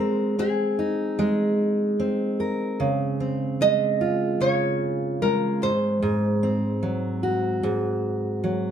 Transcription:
0.00 1.18 G#3 medium
0.00 0.38 C4 medium
0.00 0.39 A#4 loud
0.39 1.99 C4 medium
0.39 1.96 G#4 medium
0.79 2.88 D#4 medium
1.19 3.60 G#3 loud
2.00 3.20 C4 medium
2.40 2.88 A#4 medium
2.80 4.39 C#3 medium
3.20 6.43 C4 medium
3.61 5.22 G#3 medium
3.61 4.41 D#5 loud
4.01 5.70 F4 medium
4.41 5.70 C#3 medium
4.41 5.24 C#5 loud
5.22 6.82 G#3 medium
5.22 5.63 A#4 medium
5.62 6.01 G#2 medium
5.62 8.71 C5 medium
6.02 7.62 G#2 medium
6.43 8.71 C4 medium
6.83 8.42 F#3 medium
7.23 8.71 F#4 medium
7.63 8.71 G#2 medium
8.44 8.71 F#3 medium

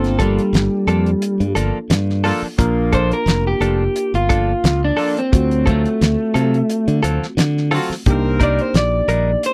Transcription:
0.00 0.38 G1 loud
0.00 0.52 A#3 medium
0.00 2.55 A#3 medium
0.00 0.20 C4 medium
0.00 2.55 D4 medium
0.00 0.53 F4 medium
0.00 2.55 F4 medium
0.00 0.54 A4 medium
0.00 2.55 A4 medium
0.04 snare soft
0.04 closed hi-hat soft
0.19 0.42 F3 medium
0.19 1.54 G3 medium
0.19 0.42 A#3 medium
0.19 0.41 D4 medium
0.19 0.41 A4 medium
0.19 kick medium
0.19 closed hi-hat medium
0.39 closed hi-hat soft
0.53 0.67 G1 medium
0.53 snare loud
0.53 closed hi-hat medium
0.87 1.14 F2 medium
0.87 1.10 F3 medium
0.87 1.10 A#3 medium
0.87 1.10 D4 medium
0.87 1.09 A4 medium
0.87 closed hi-hat medium
1.06 closed hi-hat soft
1.22 closed hi-hat medium
1.40 1.53 G2 medium
1.40 closed hi-hat soft
1.55 1.70 G1 medium
1.55 1.78 F3 medium
1.55 1.78 A#3 medium
1.55 1.78 D4 medium
1.55 1.77 A4 medium
1.55 closed hi-hat medium
1.90 2.30 G2 medium
1.90 snare loud
1.90 closed hi-hat medium
2.10 snare soft
2.24 2.47 F3 medium
2.24 2.40 A#3 medium
2.24 2.47 A#3 medium
2.24 2.46 D4 medium
2.24 2.41 F4 medium
2.24 2.46 A4 medium
2.24 2.42 A4 medium
2.24 open hi-hat medium
2.42 muted fingered electric bass stroke soft
2.57 3.11 A#1 medium
2.57 3.26 A#3 medium
2.57 5.29 A#3 medium
2.57 5.29 D4 medium
2.57 3.27 F4 medium
2.57 5.29 F4 medium
2.57 5.29 A#4 medium
2.57 kick loud
2.57 closed hi-hat medium
2.93 3.15 F3 medium
2.93 3.15 A#3 medium
2.93 3.15 D4 medium
2.93 3.15 A4 medium
2.93 3.12 C5 medium
2.93 kick medium
2.93 closed hi-hat medium
3.12 3.46 A#4 medium
3.12 closed hi-hat soft
3.26 3.53 F1 loud
3.26 snare loud
3.26 closed hi-hat medium
3.47 4.13 G4 medium
3.60 3.87 F1 medium
3.60 3.84 F3 medium
3.60 3.83 A#3 medium
3.60 3.83 D4 medium
3.60 3.83 A4 medium
3.60 closed hi-hat medium
3.96 closed hi-hat medium
4.14 4.52 G1 medium
4.14 4.81 F4 medium
4.14 closed hi-hat soft
4.29 4.52 F3 soft
4.29 4.52 A#3 medium
4.29 4.52 D4 medium
4.29 4.51 A4 medium
4.29 kick medium
4.29 closed hi-hat medium
4.64 4.90 C#2 loud
4.64 snare loud
4.64 closed hi-hat medium
4.85 5.17 D4 medium
4.97 5.20 F3 medium
4.97 5.13 A#3 medium
4.97 5.20 A#3 medium
4.97 5.20 D4 medium
4.97 5.14 F4 medium
4.97 5.19 A4 medium
4.97 5.15 A4 medium
4.97 open hi-hat medium
5.17 5.67 C4 medium
5.17 closed hi-hat soft
5.31 5.85 D2 medium
5.31 6.02 F#3 medium
5.31 8.03 A3 medium
5.31 6.01 C4 medium
5.31 8.03 C4 medium
5.31 8.02 F4 soft
5.31 8.02 F#4 medium
5.31 kick loud
5.31 closed hi-hat medium
5.51 closed hi-hat soft
5.66 5.89 F#3 medium
5.66 7.01 A3 medium
5.66 5.89 C4 medium
5.66 5.88 F4 medium
5.66 5.88 A4 medium
5.66 kick medium
5.66 closed hi-hat medium
5.85 closed hi-hat soft
6.01 6.15 D2 medium
6.01 snare loud
6.01 closed hi-hat medium
6.34 6.61 C3 medium
6.34 6.57 F#3 medium
6.34 6.57 C4 medium
6.34 6.57 F4 medium
6.34 6.57 A4 medium
6.34 closed hi-hat medium
6.54 closed hi-hat soft
6.70 closed hi-hat medium
6.88 7.00 D3 medium
6.88 closed hi-hat soft
7.03 7.18 D2 medium
7.03 7.26 F#3 medium
7.03 7.26 C4 medium
7.03 7.25 F4 medium
7.03 7.25 A4 medium
7.03 closed hi-hat medium
7.23 snare soft
7.37 7.77 D3 medium
7.37 snare loud
7.37 closed hi-hat medium
7.57 snare soft
7.70 7.94 F#3 medium
7.70 7.86 C4 medium
7.70 7.94 C4 medium
7.70 7.94 F4 medium
7.70 7.89 F4 medium
7.70 7.89 F#4 medium
7.70 7.93 A4 medium
7.70 open hi-hat medium
7.90 muted fingered electric bass stroke soft
7.90 snare soft
8.06 8.59 C2 medium
8.06 9.54 A#3 medium
8.06 8.75 C4 medium
8.06 9.54 D4 medium
8.06 9.54 D#4 medium
8.06 9.54 G4 medium
8.06 8.76 A#4 loud
8.06 kick loud
8.06 closed hi-hat medium
8.40 8.63 G3 medium
8.40 8.62 D4 medium
8.40 8.62 D#4 medium
8.40 8.62 A#4 medium
8.40 8.61 D5 medium
8.40 kick medium
8.40 closed hi-hat medium
8.59 8.76 C5 medium
8.59 closed hi-hat soft
8.74 9.00 A#1 loud
8.74 9.42 D5 medium
8.74 snare loud
8.74 closed hi-hat medium
9.08 9.34 A#1 medium
9.08 9.31 G3 medium
9.08 9.31 D4 medium
9.08 9.31 D#4 medium
9.08 9.30 A#4 medium
9.08 closed hi-hat medium
9.43 9.54 C5 medium
9.43 closed hi-hat medium

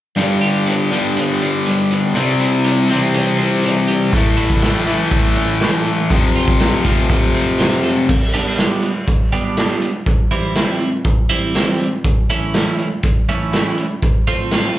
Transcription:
0.16 0.90 G2 medium
0.16 1.41 G2 medium
0.16 0.90 D3 medium
0.16 0.90 G3 medium
0.16 closed hi-hat medium
0.41 1.65 G4 medium
0.41 closed hi-hat medium
0.66 1.16 B3 medium
0.66 closed hi-hat medium
0.91 2.14 G2 medium
0.91 2.14 D3 medium
0.91 2.14 G3 medium
0.91 1.66 G3 medium
0.91 closed hi-hat soft
1.16 1.91 B3 medium
1.16 closed hi-hat medium
1.42 2.16 D4 medium
1.42 closed hi-hat medium
1.66 2.16 G3 medium
1.66 closed hi-hat medium
1.90 2.16 B3 medium
1.90 closed hi-hat medium
2.14 2.88 C3 medium
2.14 3.40 C3 medium
2.14 2.89 G3 medium
2.14 2.89 C4 medium
2.14 closed hi-hat medium
2.40 3.64 E4 medium
2.40 closed hi-hat medium
2.64 3.13 G3 medium
2.64 closed hi-hat medium
2.89 4.12 C3 medium
2.89 3.64 E3 soft
2.89 4.13 G3 medium
2.89 4.12 C4 medium
2.89 closed hi-hat soft
3.14 3.87 G3 medium
3.14 closed hi-hat medium
3.38 4.13 C4 medium
3.38 closed hi-hat soft
3.63 4.14 E3 medium
3.63 closed hi-hat medium
3.88 4.13 G3 medium
3.88 closed hi-hat soft
4.13 4.86 A2 medium
4.13 5.37 A2 medium
4.13 4.87 E3 medium
4.13 4.86 A3 medium
4.13 kick medium
4.13 closed hi-hat medium
4.37 5.61 E4 medium
4.37 closed hi-hat medium
4.50 kick medium
4.62 5.10 A3 medium
4.62 snare loud
4.62 closed hi-hat medium
4.86 6.11 A2 medium
4.86 5.60 E3 medium
4.86 6.10 E3 medium
4.86 6.10 A3 medium
4.86 closed hi-hat soft
5.11 5.84 A3 medium
5.11 kick medium
5.11 closed hi-hat medium
5.36 6.11 C#4 medium
5.36 closed hi-hat medium
5.60 6.11 E3 medium
5.60 snare medium
5.60 closed hi-hat medium
5.86 6.11 A3 medium
5.86 closed hi-hat medium
6.10 7.35 F2 medium
6.10 6.84 F2 medium
6.10 6.84 C3 medium
6.10 6.84 F3 medium
6.10 kick medium
6.10 closed hi-hat medium
6.35 7.60 F4 medium
6.35 closed hi-hat medium
6.48 kick medium
6.60 7.09 A3 medium
6.60 snare medium
6.60 closed hi-hat medium
6.85 8.09 F2 medium
6.85 8.08 C3 medium
6.85 8.08 F3 medium
6.85 7.58 F3 soft
6.85 kick medium
6.85 closed hi-hat soft
7.09 7.83 A3 medium
7.09 kick loud
7.09 closed hi-hat medium
7.35 8.09 C4 medium
7.35 closed hi-hat medium
7.59 8.09 F3 medium
7.59 snare medium
7.59 closed hi-hat medium
7.84 8.09 A3 medium
7.84 closed hi-hat soft
8.09 kick medium
8.09 crash medium
8.34 8.58 G3 medium
8.34 8.58 B3 medium
8.34 8.58 D4 medium
8.34 8.59 G4 medium
8.34 closed hi-hat medium
8.58 8.91 G3 medium
8.58 8.91 B3 medium
8.58 8.91 D4 medium
8.58 8.92 G4 medium
8.58 snare medium
8.58 closed hi-hat medium
8.83 closed hi-hat medium
9.07 kick medium
9.07 closed hi-hat medium
9.32 9.56 G3 medium
9.32 9.57 B3 medium
9.32 9.57 D4 medium
9.32 9.57 G4 medium
9.32 closed hi-hat medium
9.57 9.90 G3 medium
9.57 9.90 B3 medium
9.57 9.90 D4 medium
9.57 9.90 G4 medium
9.57 snare medium
9.57 closed hi-hat medium
9.82 closed hi-hat medium
10.06 kick medium
10.06 closed hi-hat medium
10.31 10.54 E3 medium
10.31 10.55 G3 medium
10.31 10.55 C4 medium
10.31 10.55 E4 medium
10.31 closed hi-hat medium
10.55 10.88 E3 medium
10.55 10.89 G3 medium
10.55 10.89 C4 medium
10.55 10.89 E4 medium
10.55 snare medium
10.55 closed hi-hat medium
10.80 closed hi-hat medium
11.04 kick loud
11.04 closed hi-hat medium
11.30 11.53 E3 medium
11.30 11.54 G3 medium
11.30 11.54 C4 medium
11.30 11.54 E4 medium
11.30 closed hi-hat medium
11.54 11.87 E3 medium
11.54 11.87 G3 medium
11.54 11.88 C4 medium
11.54 11.88 E4 medium
11.54 snare medium
11.54 closed hi-hat medium
11.80 closed hi-hat soft
12.04 kick medium
12.04 closed hi-hat medium
12.29 12.54 E3 medium
12.29 12.55 A3 medium
12.29 12.55 C#4 medium
12.29 12.55 E4 medium
12.29 closed hi-hat medium
12.54 12.87 E3 medium
12.54 12.88 A3 medium
12.54 12.88 C#4 medium
12.54 12.88 E4 medium
12.54 snare loud
12.54 closed hi-hat medium
12.78 closed hi-hat soft
13.03 kick medium
13.03 closed hi-hat medium
13.28 13.51 E3 medium
13.28 13.52 A3 medium
13.28 13.52 C#4 medium
13.28 13.52 E4 medium
13.28 closed hi-hat medium
13.52 13.85 E3 medium
13.52 13.85 A3 medium
13.52 13.86 C#4 medium
13.52 13.86 E4 medium
13.52 snare medium
13.52 closed hi-hat medium
13.78 closed hi-hat medium
14.02 kick medium
14.02 closed hi-hat medium
14.27 14.51 F3 medium
14.27 14.51 A3 medium
14.27 14.52 C4 medium
14.27 14.53 F4 medium
14.27 closed hi-hat medium
14.51 14.79 F3 medium
14.51 14.79 A3 medium
14.51 14.79 C4 medium
14.51 14.79 F4 medium
14.51 snare medium
14.51 closed hi-hat medium

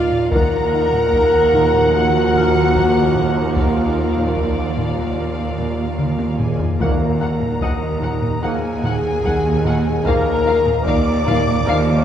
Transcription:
0.00 0.28 D#2 medium
0.00 0.29 D#3 medium
0.00 0.28 F3 medium
0.00 0.29 A#3 medium
0.00 0.17 D#4 medium
0.00 0.28 D#4 medium
0.00 0.32 F4 loud
0.00 0.28 A#4 medium
0.00 0.29 A#4 medium
0.00 0.28 D5 medium
0.00 0.33 D5 medium
0.00 1.94 D5 medium
0.00 0.29 F5 loud
0.12 taiko low-mid medium
0.31 6.57 D#2 medium
0.31 6.77 D#2 medium
0.31 6.45 D#3 loud
0.31 0.57 D#3 loud
0.31 6.57 F3 medium
0.31 6.45 A#3 loud
0.31 3.57 D#4 medium
0.31 1.91 A#4 loud
0.31 6.57 A#4 medium
0.31 6.77 A#4 medium
0.31 3.52 F#5 medium
0.31 3.57 F#5 medium
0.31 1.91 A#5 loud
0.31 taiko loud
0.74 0.98 D#4 medium
0.93 taiko low-mid medium
1.13 1.38 D#3 medium
1.13 taiko medium
1.53 1.79 D#3 medium
1.53 taiko low-mid medium
1.74 taiko low-mid medium
1.94 2.19 D#4 medium
1.94 3.39 F#4 loud
1.94 3.56 F#5 medium
2.34 2.60 D#3 medium
2.34 6.27 F6 medium
2.34 taiko low-mid medium
2.75 3.00 D#3 medium
2.75 taiko medium
3.16 3.41 D#4 medium
3.16 taiko low-mid medium
3.36 taiko low-mid soft
3.56 3.81 D#3 medium
3.56 6.36 F4 medium
3.56 6.82 F4 medium
3.56 6.57 D5 medium
3.56 6.81 D5 medium
3.56 6.36 F5 medium
3.56 taiko medium
3.98 4.22 D#4 soft
4.17 taiko low-mid soft
4.37 4.62 D#3 soft
4.37 taiko medium
4.77 5.02 D#3 medium
4.77 taiko low-mid medium
4.98 taiko low-mid medium
5.19 5.43 D#4 soft
5.58 5.83 D#3 soft
5.58 taiko low-mid soft
5.99 6.24 D#3 medium
5.99 taiko mid medium
6.19 taiko high medium
6.39 6.65 D#4 soft
6.39 6.81 G#4 medium
6.39 6.81 G#5 medium
6.39 taiko low-mid medium
6.59 taiko low medium
6.80 7.52 D#2 medium
6.80 12.04 D#2 loud
6.80 7.05 D#3 medium
6.80 7.10 D#3 medium
6.80 7.98 D#3 medium
6.80 6.88 F3 medium
6.80 7.11 A#3 medium
6.80 8.43 A#4 medium
6.80 6.88 A#4 medium
6.80 12.04 A#4 medium
6.80 12.04 D#5 medium
6.80 10.05 F#5 medium
6.80 6.89 F#5 medium
6.80 8.40 A#5 medium
6.80 taiko medium
7.20 7.29 F3 medium
7.20 7.45 D#4 medium
7.20 7.29 A#4 medium
7.20 7.28 F#5 medium
7.41 taiko low-mid soft
7.61 8.33 D#2 medium
7.61 8.34 D#2 medium
7.61 7.86 D#3 medium
7.61 7.70 F3 medium
7.61 7.70 A#4 medium
7.61 10.09 D#5 medium
7.61 7.70 F#5 medium
7.61 taiko medium
8.02 8.26 D#3 medium
8.02 8.10 F3 medium
8.02 8.10 A#4 medium
8.02 8.10 F#5 medium
8.02 taiko low-mid medium
8.22 taiko low-mid medium
8.42 9.14 D#2 medium
8.42 9.15 D#2 medium
8.42 8.72 F3 medium
8.42 8.50 F3 medium
8.42 8.72 A#3 medium
8.42 8.67 D#4 medium
8.42 9.88 G#4 loud
8.42 8.51 A#4 medium
8.42 8.50 F#5 medium
8.42 10.05 G#5 medium
8.82 9.08 D#3 medium
8.82 8.90 F3 medium
8.82 8.90 A#4 medium
8.82 8.92 F#5 medium
8.82 taiko low-mid medium
9.23 9.96 D#2 medium
9.23 9.48 D#3 medium
9.23 9.31 F3 medium
9.23 9.31 A#4 medium
9.23 9.33 F#5 medium
9.23 taiko medium
9.64 9.72 F3 medium
9.64 9.89 D#4 medium
9.64 9.72 A#4 medium
9.64 9.74 F#5 medium
9.64 taiko low-mid soft
9.85 taiko low-mid medium
10.04 10.77 D#2 medium
10.04 10.30 D#3 medium
10.04 10.12 F3 medium
10.04 10.35 F3 medium
10.04 10.35 A#3 medium
10.04 12.04 F4 medium
10.04 10.12 A#4 medium
10.04 10.84 A#4 loud
10.04 10.13 F5 medium
10.04 10.86 A#5 loud
10.04 taiko loud
10.45 10.53 F3 medium
10.45 10.70 D#4 medium
10.45 10.53 A#4 medium
10.45 10.55 F5 medium
10.66 taiko low-mid medium
10.85 11.58 D#2 medium
10.85 11.11 D#3 medium
10.85 10.93 F3 medium
10.85 10.93 A#4 medium
10.85 12.04 D5 loud
10.85 10.94 F5 medium
10.85 12.04 D6 loud
10.85 taiko medium
11.25 11.51 D#3 loud
11.25 11.33 F3 medium
11.25 11.34 A#4 medium
11.25 11.36 F5 medium
11.25 taiko low-mid medium
11.47 taiko low-mid medium
11.66 12.04 D#2 loud
11.66 11.74 F3 medium
11.66 11.97 F3 medium
11.66 11.97 A#3 medium
11.66 11.91 D#4 medium
11.66 11.74 A#4 medium
11.66 11.76 F5 medium

